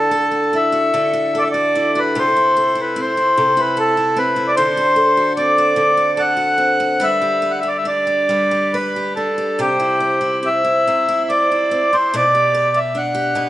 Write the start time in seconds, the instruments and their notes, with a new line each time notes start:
Already playing: steel-string acoustic guitar D3 F#4 A4, accordion A4
0.11 steel-string acoustic guitar A4
0.32 steel-string acoustic guitar F#4
0.53 steel-string acoustic guitar E4, accordion E5
0.72 steel-string acoustic guitar F#4
0.94 steel-string acoustic guitar D3 A4
1.13 steel-string acoustic guitar F#4
1.35 steel-string acoustic guitar A4, accordion D5
1.41 accordion E5
1.52 steel-string acoustic guitar F#4, accordion D5
1.75 steel-string acoustic guitar E4
1.95 steel-string acoustic guitar F#4, accordion B4
2.15 steel-string acoustic guitar C3 A4, accordion C5
2.36 steel-string acoustic guitar E4
2.57 steel-string acoustic guitar A4
2.75 steel-string acoustic guitar E4
2.81 accordion B4
2.96 steel-string acoustic guitar C4
3.01 accordion C5
3.17 steel-string acoustic guitar E4
3.37 steel-string acoustic guitar C3 A4
3.57 steel-string acoustic guitar E4, accordion B4
3.77 steel-string acoustic guitar A4, accordion A4
3.97 steel-string acoustic guitar E4
4.16 steel-string acoustic guitar C4, accordion B4
4.36 steel-string acoustic guitar E4
4.48 accordion D5
4.56 steel-string acoustic guitar D3 A4, accordion C5
4.77 steel-string acoustic guitar F#4
4.96 steel-string acoustic guitar A4
5.17 steel-string acoustic guitar F#4
5.37 steel-string acoustic guitar C4, accordion D5
5.58 steel-string acoustic guitar F#4
5.76 steel-string acoustic guitar D3 A4
5.97 steel-string acoustic guitar F#4
6.17 steel-string acoustic guitar A4, accordion F#5
6.37 steel-string acoustic guitar F#4
6.58 steel-string acoustic guitar C4
6.80 steel-string acoustic guitar F#4
7.00 steel-string acoustic guitar G3 B4, accordion E5
7.22 steel-string acoustic guitar G4
7.42 steel-string acoustic guitar B4
7.51 accordion F#5
7.60 steel-string acoustic guitar G4, accordion E5
7.68 accordion D5
7.78 accordion E5
7.85 steel-string acoustic guitar D4, accordion D5
8.07 steel-string acoustic guitar G4
8.29 steel-string acoustic guitar G3 B4
8.51 steel-string acoustic guitar G4
8.73 accordion B4, steel-string acoustic guitar B4
8.96 steel-string acoustic guitar G4
9.16 steel-string acoustic guitar D4, accordion A4
9.38 steel-string acoustic guitar G4
9.59 steel-string acoustic guitar C3 C5, accordion G4
9.80 steel-string acoustic guitar E4
10.00 steel-string acoustic guitar C5
10.21 steel-string acoustic guitar E4
10.43 steel-string acoustic guitar C4, accordion E5
10.65 steel-string acoustic guitar E4
10.87 steel-string acoustic guitar C3 C5
11.09 steel-string acoustic guitar E4
11.25 accordion E5
11.30 steel-string acoustic guitar C5, accordion D5
11.52 steel-string acoustic guitar E4
11.71 steel-string acoustic guitar C4
11.93 steel-string acoustic guitar E4, accordion C5
12.14 steel-string acoustic guitar B2 B4, accordion D5
12.35 steel-string acoustic guitar G4
12.55 steel-string acoustic guitar B4
12.74 steel-string acoustic guitar G4, accordion E5
12.95 steel-string acoustic guitar D4, accordion F#5
13.15 steel-string acoustic guitar G4
13.35 steel-string acoustic guitar B2 B4